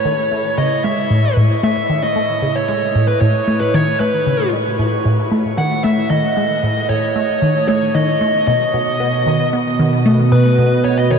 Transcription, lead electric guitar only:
0, 0, Header, 1, 2, 480
1, 0, Start_track
1, 0, Tempo, 526316
1, 1488, Time_signature, 4, 2, 24, 8
1, 10203, End_track
2, 0, Start_track
2, 0, Title_t, "Lead electric guitar"
2, 0, Program_c, 0, 29
2, 0, Note_on_c, 0, 73, 92
2, 530, Note_on_c, 0, 75, 99
2, 565, Note_off_c, 0, 73, 0
2, 769, Note_off_c, 0, 75, 0
2, 772, Note_on_c, 0, 76, 94
2, 1217, Note_off_c, 0, 76, 0
2, 1495, Note_on_c, 0, 76, 105
2, 1850, Note_off_c, 0, 76, 0
2, 1854, Note_on_c, 0, 75, 96
2, 2332, Note_on_c, 0, 73, 82
2, 2346, Note_off_c, 0, 75, 0
2, 2438, Note_off_c, 0, 73, 0
2, 2449, Note_on_c, 0, 73, 89
2, 2804, Note_off_c, 0, 73, 0
2, 2808, Note_on_c, 0, 71, 76
2, 2924, Note_off_c, 0, 71, 0
2, 2928, Note_on_c, 0, 73, 85
2, 3284, Note_off_c, 0, 73, 0
2, 3288, Note_on_c, 0, 71, 73
2, 3410, Note_off_c, 0, 71, 0
2, 3410, Note_on_c, 0, 73, 85
2, 3645, Note_off_c, 0, 73, 0
2, 3649, Note_on_c, 0, 71, 75
2, 4095, Note_off_c, 0, 71, 0
2, 5090, Note_on_c, 0, 78, 93
2, 5323, Note_off_c, 0, 78, 0
2, 5327, Note_on_c, 0, 76, 95
2, 5562, Note_off_c, 0, 76, 0
2, 5566, Note_on_c, 0, 75, 93
2, 6284, Note_on_c, 0, 73, 84
2, 6309, Note_off_c, 0, 75, 0
2, 6995, Note_off_c, 0, 73, 0
2, 7006, Note_on_c, 0, 73, 78
2, 7248, Note_on_c, 0, 75, 92
2, 7255, Note_off_c, 0, 73, 0
2, 7717, Note_off_c, 0, 75, 0
2, 7728, Note_on_c, 0, 75, 79
2, 8652, Note_off_c, 0, 75, 0
2, 9414, Note_on_c, 0, 71, 94
2, 9889, Note_off_c, 0, 71, 0
2, 9893, Note_on_c, 0, 73, 95
2, 10010, Note_on_c, 0, 75, 97
2, 10014, Note_off_c, 0, 73, 0
2, 10131, Note_on_c, 0, 73, 104
2, 10133, Note_off_c, 0, 75, 0
2, 10203, Note_off_c, 0, 73, 0
2, 10203, End_track
0, 0, End_of_file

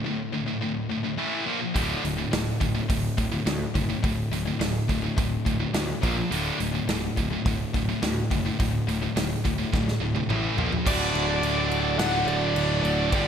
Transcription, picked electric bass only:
0, 0, Header, 1, 2, 480
1, 0, Start_track
1, 0, Key_signature, 2, "major"
1, 0, Tempo, 568720
1, 1481, Time_signature, 4, 2, 24, 8
1, 11205, End_track
2, 0, Start_track
2, 0, Title_t, "Picked electric bass"
2, 0, Program_c, 0, 34
2, 1479, Note_on_c, 0, 26, 79
2, 1633, Note_off_c, 0, 26, 0
2, 1729, Note_on_c, 0, 26, 89
2, 1880, Note_off_c, 0, 26, 0
2, 1972, Note_on_c, 0, 26, 83
2, 2123, Note_off_c, 0, 26, 0
2, 2204, Note_on_c, 0, 26, 80
2, 2357, Note_off_c, 0, 26, 0
2, 2445, Note_on_c, 0, 26, 90
2, 2598, Note_off_c, 0, 26, 0
2, 2682, Note_on_c, 0, 26, 71
2, 2836, Note_off_c, 0, 26, 0
2, 2922, Note_on_c, 0, 38, 78
2, 3076, Note_off_c, 0, 38, 0
2, 3166, Note_on_c, 0, 30, 77
2, 3319, Note_off_c, 0, 30, 0
2, 3406, Note_on_c, 0, 26, 97
2, 3559, Note_off_c, 0, 26, 0
2, 3642, Note_on_c, 0, 26, 97
2, 3796, Note_off_c, 0, 26, 0
2, 3884, Note_on_c, 0, 26, 93
2, 4038, Note_off_c, 0, 26, 0
2, 4129, Note_on_c, 0, 26, 76
2, 4281, Note_off_c, 0, 26, 0
2, 4369, Note_on_c, 0, 26, 96
2, 4522, Note_off_c, 0, 26, 0
2, 4610, Note_on_c, 0, 26, 74
2, 4763, Note_off_c, 0, 26, 0
2, 4844, Note_on_c, 0, 38, 70
2, 4999, Note_off_c, 0, 38, 0
2, 5091, Note_on_c, 0, 34, 83
2, 5244, Note_off_c, 0, 34, 0
2, 5328, Note_on_c, 0, 26, 81
2, 5482, Note_off_c, 0, 26, 0
2, 5574, Note_on_c, 0, 26, 88
2, 5726, Note_off_c, 0, 26, 0
2, 5812, Note_on_c, 0, 26, 89
2, 5964, Note_off_c, 0, 26, 0
2, 6056, Note_on_c, 0, 26, 80
2, 6208, Note_off_c, 0, 26, 0
2, 6294, Note_on_c, 0, 26, 93
2, 6446, Note_off_c, 0, 26, 0
2, 6537, Note_on_c, 0, 26, 70
2, 6689, Note_off_c, 0, 26, 0
2, 6777, Note_on_c, 0, 38, 85
2, 6929, Note_off_c, 0, 38, 0
2, 7017, Note_on_c, 0, 30, 73
2, 7169, Note_off_c, 0, 30, 0
2, 7257, Note_on_c, 0, 26, 96
2, 7409, Note_off_c, 0, 26, 0
2, 7495, Note_on_c, 0, 26, 100
2, 7648, Note_off_c, 0, 26, 0
2, 7732, Note_on_c, 0, 26, 81
2, 7885, Note_off_c, 0, 26, 0
2, 7979, Note_on_c, 0, 26, 75
2, 8130, Note_off_c, 0, 26, 0
2, 8213, Note_on_c, 0, 26, 91
2, 8366, Note_off_c, 0, 26, 0
2, 8444, Note_on_c, 0, 26, 73
2, 8600, Note_off_c, 0, 26, 0
2, 8685, Note_on_c, 0, 33, 73
2, 8839, Note_off_c, 0, 33, 0
2, 8922, Note_on_c, 0, 34, 80
2, 9078, Note_off_c, 0, 34, 0
2, 9172, Note_on_c, 0, 26, 98
2, 9393, Note_off_c, 0, 26, 0
2, 9398, Note_on_c, 0, 26, 99
2, 9630, Note_off_c, 0, 26, 0
2, 9640, Note_on_c, 0, 26, 92
2, 10098, Note_off_c, 0, 26, 0
2, 10117, Note_on_c, 0, 26, 99
2, 10348, Note_off_c, 0, 26, 0
2, 10353, Note_on_c, 0, 26, 82
2, 10585, Note_off_c, 0, 26, 0
2, 10596, Note_on_c, 0, 26, 85
2, 10826, Note_off_c, 0, 26, 0
2, 10832, Note_on_c, 0, 26, 81
2, 11062, Note_off_c, 0, 26, 0
2, 11077, Note_on_c, 0, 31, 96
2, 11205, Note_off_c, 0, 31, 0
2, 11205, End_track
0, 0, End_of_file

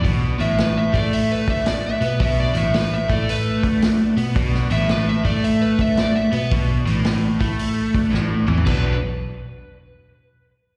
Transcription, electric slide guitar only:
0, 0, Header, 1, 2, 480
1, 0, Start_track
1, 0, Key_signature, 2, "minor"
1, 0, Tempo, 539568
1, 36, Time_signature, 4, 2, 24, 8
1, 9578, End_track
2, 0, Start_track
2, 0, Title_t, "Electric slide guitar"
2, 0, Program_c, 0, 29
2, 363, Note_on_c, 0, 76, 86
2, 514, Note_off_c, 0, 76, 0
2, 542, Note_on_c, 0, 71, 67
2, 684, Note_off_c, 0, 71, 0
2, 689, Note_on_c, 0, 76, 76
2, 837, Note_off_c, 0, 76, 0
2, 842, Note_on_c, 0, 74, 77
2, 993, Note_off_c, 0, 74, 0
2, 1010, Note_on_c, 0, 76, 70
2, 1158, Note_off_c, 0, 76, 0
2, 1172, Note_on_c, 0, 71, 68
2, 1318, Note_off_c, 0, 71, 0
2, 1335, Note_on_c, 0, 76, 72
2, 1480, Note_off_c, 0, 76, 0
2, 1489, Note_on_c, 0, 74, 79
2, 1637, Note_off_c, 0, 74, 0
2, 1659, Note_on_c, 0, 76, 71
2, 1801, Note_off_c, 0, 76, 0
2, 1822, Note_on_c, 0, 71, 59
2, 1963, Note_off_c, 0, 71, 0
2, 1973, Note_on_c, 0, 76, 83
2, 2118, Note_off_c, 0, 76, 0
2, 2134, Note_on_c, 0, 74, 76
2, 2278, Note_off_c, 0, 74, 0
2, 2288, Note_on_c, 0, 76, 80
2, 2436, Note_off_c, 0, 76, 0
2, 2447, Note_on_c, 0, 71, 84
2, 2595, Note_off_c, 0, 71, 0
2, 2612, Note_on_c, 0, 76, 69
2, 2757, Note_off_c, 0, 76, 0
2, 2775, Note_on_c, 0, 74, 72
2, 2919, Note_off_c, 0, 74, 0
2, 2933, Note_on_c, 0, 71, 89
2, 3227, Note_off_c, 0, 71, 0
2, 4200, Note_on_c, 0, 76, 89
2, 4351, Note_off_c, 0, 76, 0
2, 4359, Note_on_c, 0, 71, 74
2, 4510, Note_off_c, 0, 71, 0
2, 4527, Note_on_c, 0, 76, 74
2, 4674, Note_off_c, 0, 76, 0
2, 4677, Note_on_c, 0, 74, 76
2, 4829, Note_off_c, 0, 74, 0
2, 4841, Note_on_c, 0, 76, 76
2, 4991, Note_off_c, 0, 76, 0
2, 4997, Note_on_c, 0, 71, 70
2, 5149, Note_off_c, 0, 71, 0
2, 5168, Note_on_c, 0, 76, 83
2, 5314, Note_off_c, 0, 76, 0
2, 5336, Note_on_c, 0, 74, 75
2, 5477, Note_on_c, 0, 76, 91
2, 5479, Note_off_c, 0, 74, 0
2, 5629, Note_off_c, 0, 76, 0
2, 5640, Note_on_c, 0, 71, 72
2, 5790, Note_off_c, 0, 71, 0
2, 7706, Note_on_c, 0, 71, 78
2, 8000, Note_off_c, 0, 71, 0
2, 9578, End_track
0, 0, End_of_file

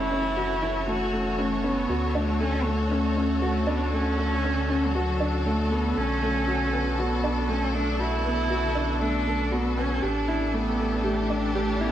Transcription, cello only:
0, 0, Header, 1, 2, 480
1, 0, Start_track
1, 0, Key_signature, 2, "minor"
1, 0, Tempo, 508475
1, 1789, Time_signature, 4, 2, 24, 8
1, 11251, End_track
2, 0, Start_track
2, 0, Title_t, "Cello"
2, 0, Program_c, 0, 42
2, 0, Note_on_c, 0, 64, 87
2, 818, Note_off_c, 0, 64, 0
2, 823, Note_on_c, 0, 66, 93
2, 1306, Note_on_c, 0, 57, 79
2, 1320, Note_off_c, 0, 66, 0
2, 1545, Note_on_c, 0, 59, 92
2, 1559, Note_off_c, 0, 57, 0
2, 2028, Note_on_c, 0, 57, 83
2, 2042, Note_off_c, 0, 59, 0
2, 2268, Note_on_c, 0, 61, 92
2, 2282, Note_off_c, 0, 57, 0
2, 2515, Note_on_c, 0, 57, 91
2, 2529, Note_off_c, 0, 61, 0
2, 3224, Note_off_c, 0, 57, 0
2, 3230, Note_on_c, 0, 57, 86
2, 3470, Note_on_c, 0, 59, 88
2, 3485, Note_off_c, 0, 57, 0
2, 3704, Note_off_c, 0, 59, 0
2, 3709, Note_on_c, 0, 61, 89
2, 4603, Note_on_c, 0, 55, 54
2, 4617, Note_off_c, 0, 61, 0
2, 4669, Note_on_c, 0, 54, 80
2, 4683, Note_off_c, 0, 55, 0
2, 5151, Note_on_c, 0, 57, 76
2, 5166, Note_off_c, 0, 54, 0
2, 5392, Note_on_c, 0, 59, 84
2, 5406, Note_off_c, 0, 57, 0
2, 5635, Note_on_c, 0, 61, 87
2, 5649, Note_off_c, 0, 59, 0
2, 6592, Note_on_c, 0, 59, 85
2, 6606, Note_off_c, 0, 61, 0
2, 7073, Note_on_c, 0, 61, 85
2, 7087, Note_off_c, 0, 59, 0
2, 7309, Note_off_c, 0, 61, 0
2, 7314, Note_on_c, 0, 62, 86
2, 7550, Note_on_c, 0, 64, 96
2, 7565, Note_off_c, 0, 62, 0
2, 8503, Note_off_c, 0, 64, 0
2, 8508, Note_on_c, 0, 62, 94
2, 8985, Note_on_c, 0, 59, 87
2, 8999, Note_off_c, 0, 62, 0
2, 9227, Note_on_c, 0, 61, 85
2, 9242, Note_off_c, 0, 59, 0
2, 9468, Note_on_c, 0, 62, 83
2, 9482, Note_off_c, 0, 61, 0
2, 9948, Note_on_c, 0, 59, 90
2, 9962, Note_off_c, 0, 62, 0
2, 10428, Note_on_c, 0, 57, 87
2, 10442, Note_off_c, 0, 59, 0
2, 10902, Note_off_c, 0, 57, 0
2, 10908, Note_on_c, 0, 57, 81
2, 11148, Note_on_c, 0, 59, 82
2, 11162, Note_off_c, 0, 57, 0
2, 11251, Note_off_c, 0, 59, 0
2, 11251, End_track
0, 0, End_of_file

